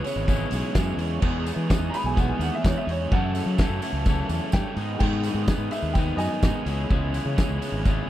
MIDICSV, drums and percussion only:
0, 0, Header, 1, 2, 480
1, 0, Start_track
1, 0, Tempo, 473560
1, 1240, Time_signature, 4, 2, 24, 8
1, 8206, End_track
2, 0, Start_track
2, 0, Title_t, "Drums"
2, 46, Note_on_c, 9, 46, 80
2, 69, Note_on_c, 9, 54, 82
2, 147, Note_off_c, 9, 46, 0
2, 170, Note_off_c, 9, 54, 0
2, 284, Note_on_c, 9, 36, 112
2, 293, Note_on_c, 9, 54, 87
2, 385, Note_off_c, 9, 36, 0
2, 395, Note_off_c, 9, 54, 0
2, 515, Note_on_c, 9, 46, 86
2, 534, Note_on_c, 9, 54, 81
2, 616, Note_off_c, 9, 46, 0
2, 635, Note_off_c, 9, 54, 0
2, 761, Note_on_c, 9, 36, 109
2, 763, Note_on_c, 9, 38, 112
2, 764, Note_on_c, 9, 54, 107
2, 863, Note_off_c, 9, 36, 0
2, 864, Note_off_c, 9, 38, 0
2, 866, Note_off_c, 9, 54, 0
2, 1001, Note_on_c, 9, 46, 87
2, 1012, Note_on_c, 9, 54, 32
2, 1103, Note_off_c, 9, 46, 0
2, 1113, Note_off_c, 9, 54, 0
2, 1236, Note_on_c, 9, 49, 103
2, 1241, Note_on_c, 9, 36, 116
2, 1338, Note_off_c, 9, 49, 0
2, 1343, Note_off_c, 9, 36, 0
2, 1485, Note_on_c, 9, 46, 86
2, 1485, Note_on_c, 9, 54, 81
2, 1586, Note_off_c, 9, 54, 0
2, 1587, Note_off_c, 9, 46, 0
2, 1725, Note_on_c, 9, 36, 114
2, 1727, Note_on_c, 9, 54, 98
2, 1734, Note_on_c, 9, 38, 118
2, 1826, Note_off_c, 9, 36, 0
2, 1829, Note_off_c, 9, 54, 0
2, 1835, Note_off_c, 9, 38, 0
2, 1966, Note_on_c, 9, 46, 93
2, 1966, Note_on_c, 9, 54, 76
2, 2067, Note_off_c, 9, 54, 0
2, 2068, Note_off_c, 9, 46, 0
2, 2202, Note_on_c, 9, 36, 109
2, 2211, Note_on_c, 9, 54, 72
2, 2303, Note_off_c, 9, 36, 0
2, 2313, Note_off_c, 9, 54, 0
2, 2441, Note_on_c, 9, 46, 81
2, 2444, Note_on_c, 9, 54, 73
2, 2543, Note_off_c, 9, 46, 0
2, 2545, Note_off_c, 9, 54, 0
2, 2681, Note_on_c, 9, 36, 123
2, 2682, Note_on_c, 9, 54, 85
2, 2695, Note_on_c, 9, 38, 109
2, 2782, Note_off_c, 9, 36, 0
2, 2784, Note_off_c, 9, 54, 0
2, 2797, Note_off_c, 9, 38, 0
2, 2928, Note_on_c, 9, 46, 82
2, 3029, Note_off_c, 9, 46, 0
2, 3160, Note_on_c, 9, 36, 114
2, 3262, Note_off_c, 9, 36, 0
2, 3394, Note_on_c, 9, 54, 67
2, 3404, Note_on_c, 9, 46, 84
2, 3495, Note_off_c, 9, 54, 0
2, 3506, Note_off_c, 9, 46, 0
2, 3632, Note_on_c, 9, 54, 89
2, 3636, Note_on_c, 9, 36, 117
2, 3643, Note_on_c, 9, 38, 108
2, 3734, Note_off_c, 9, 54, 0
2, 3737, Note_off_c, 9, 36, 0
2, 3745, Note_off_c, 9, 38, 0
2, 3872, Note_on_c, 9, 54, 72
2, 3877, Note_on_c, 9, 46, 88
2, 3973, Note_off_c, 9, 54, 0
2, 3978, Note_off_c, 9, 46, 0
2, 4110, Note_on_c, 9, 54, 69
2, 4116, Note_on_c, 9, 36, 117
2, 4212, Note_off_c, 9, 54, 0
2, 4217, Note_off_c, 9, 36, 0
2, 4352, Note_on_c, 9, 54, 65
2, 4356, Note_on_c, 9, 46, 78
2, 4454, Note_off_c, 9, 54, 0
2, 4457, Note_off_c, 9, 46, 0
2, 4582, Note_on_c, 9, 54, 96
2, 4596, Note_on_c, 9, 36, 117
2, 4606, Note_on_c, 9, 38, 114
2, 4684, Note_off_c, 9, 54, 0
2, 4697, Note_off_c, 9, 36, 0
2, 4707, Note_off_c, 9, 38, 0
2, 4831, Note_on_c, 9, 46, 82
2, 4932, Note_off_c, 9, 46, 0
2, 5068, Note_on_c, 9, 49, 104
2, 5074, Note_on_c, 9, 36, 118
2, 5170, Note_off_c, 9, 49, 0
2, 5175, Note_off_c, 9, 36, 0
2, 5305, Note_on_c, 9, 46, 88
2, 5314, Note_on_c, 9, 54, 78
2, 5406, Note_off_c, 9, 46, 0
2, 5415, Note_off_c, 9, 54, 0
2, 5552, Note_on_c, 9, 36, 114
2, 5552, Note_on_c, 9, 54, 94
2, 5556, Note_on_c, 9, 38, 113
2, 5653, Note_off_c, 9, 54, 0
2, 5654, Note_off_c, 9, 36, 0
2, 5657, Note_off_c, 9, 38, 0
2, 5788, Note_on_c, 9, 46, 92
2, 5804, Note_on_c, 9, 54, 70
2, 5889, Note_off_c, 9, 46, 0
2, 5905, Note_off_c, 9, 54, 0
2, 6029, Note_on_c, 9, 54, 73
2, 6034, Note_on_c, 9, 36, 106
2, 6131, Note_off_c, 9, 54, 0
2, 6135, Note_off_c, 9, 36, 0
2, 6269, Note_on_c, 9, 46, 80
2, 6281, Note_on_c, 9, 54, 70
2, 6370, Note_off_c, 9, 46, 0
2, 6383, Note_off_c, 9, 54, 0
2, 6513, Note_on_c, 9, 54, 94
2, 6515, Note_on_c, 9, 36, 119
2, 6521, Note_on_c, 9, 38, 109
2, 6615, Note_off_c, 9, 54, 0
2, 6616, Note_off_c, 9, 36, 0
2, 6622, Note_off_c, 9, 38, 0
2, 6755, Note_on_c, 9, 46, 85
2, 6857, Note_off_c, 9, 46, 0
2, 6998, Note_on_c, 9, 54, 26
2, 6999, Note_on_c, 9, 36, 126
2, 7099, Note_off_c, 9, 54, 0
2, 7100, Note_off_c, 9, 36, 0
2, 7239, Note_on_c, 9, 46, 81
2, 7241, Note_on_c, 9, 54, 76
2, 7340, Note_off_c, 9, 46, 0
2, 7342, Note_off_c, 9, 54, 0
2, 7480, Note_on_c, 9, 54, 91
2, 7481, Note_on_c, 9, 36, 115
2, 7486, Note_on_c, 9, 38, 105
2, 7581, Note_off_c, 9, 54, 0
2, 7583, Note_off_c, 9, 36, 0
2, 7588, Note_off_c, 9, 38, 0
2, 7724, Note_on_c, 9, 46, 82
2, 7727, Note_on_c, 9, 54, 78
2, 7826, Note_off_c, 9, 46, 0
2, 7828, Note_off_c, 9, 54, 0
2, 7961, Note_on_c, 9, 54, 74
2, 7962, Note_on_c, 9, 36, 108
2, 8062, Note_off_c, 9, 54, 0
2, 8063, Note_off_c, 9, 36, 0
2, 8206, End_track
0, 0, End_of_file